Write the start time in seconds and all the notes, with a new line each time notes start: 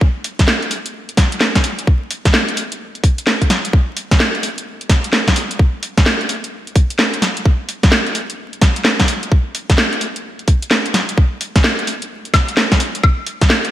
0.01 kick
0.24 open hi-hat
0.39 kick, snare, closed hi-hat
0.48 snare
0.62 closed hi-hat
0.71 open hi-hat
0.86 closed hi-hat
1.09 closed hi-hat
1.17 kick, snare, open hi-hat
1.32 closed hi-hat
1.41 snare
1.55 kick, snare, closed hi-hat
1.64 open hi-hat
1.79 closed hi-hat
1.87 kick
2.11 open hi-hat
2.25 kick, snare, closed hi-hat
2.34 snare
2.48 closed hi-hat
2.57 open hi-hat
2.72 closed hi-hat
2.95 closed hi-hat
3.04 kick, open hi-hat
3.18 closed hi-hat
3.27 snare
3.42 kick, closed hi-hat
3.50 snare, open hi-hat
3.65 closed hi-hat
3.73 kick
3.97 open hi-hat
4.11 kick, snare, closed hi-hat
4.20 snare
4.35 closed hi-hat
4.43 open hi-hat
4.58 closed hi-hat
4.81 closed hi-hat
4.90 kick, snare, open hi-hat
5.04 closed hi-hat
5.13 snare
5.28 kick, snare, closed hi-hat
5.36 open hi-hat
5.51 closed hi-hat
5.59 kick
5.83 open hi-hat
5.97 kick, snare, closed hi-hat
6.06 snare
6.21 closed hi-hat
6.29 open hi-hat
6.44 closed hi-hat
6.67 closed hi-hat
6.76 kick, open hi-hat
6.90 closed hi-hat
6.99 snare
7.14 closed hi-hat
7.22 snare, open hi-hat
7.37 closed hi-hat
7.45 kick
7.69 open hi-hat
7.83 kick, snare, closed hi-hat
7.92 snare
8.06 closed hi-hat
8.15 open hi-hat
8.30 closed hi-hat
8.53 closed hi-hat
8.62 kick, snare, open hi-hat
8.76 closed hi-hat
8.85 snare
9.00 kick, snare, closed hi-hat
9.08 open hi-hat
9.23 closed hi-hat
9.32 kick
9.55 open hi-hat
9.70 kick, snare, closed hi-hat
9.78 snare
9.93 closed hi-hat
10.01 open hi-hat
10.16 closed hi-hat
10.39 closed hi-hat
10.48 kick, open hi-hat
10.62 closed hi-hat
10.71 snare
10.86 closed hi-hat
10.94 snare, open hi-hat
11.09 closed hi-hat
11.18 kick
11.41 open hi-hat
11.56 kick, snare, closed hi-hat
11.64 snare
11.79 closed hi-hat
11.87 open hi-hat
12.02 closed hi-hat
12.25 closed hi-hat
12.34 kick, snare, open hi-hat, high woodblock
12.49 closed hi-hat
12.57 snare
12.72 kick, snare, closed hi-hat
12.80 open hi-hat
12.95 closed hi-hat
13.03 kick, high woodblock
13.26 open hi-hat
13.41 kick, snare, closed hi-hat
13.50 snare
13.65 closed hi-hat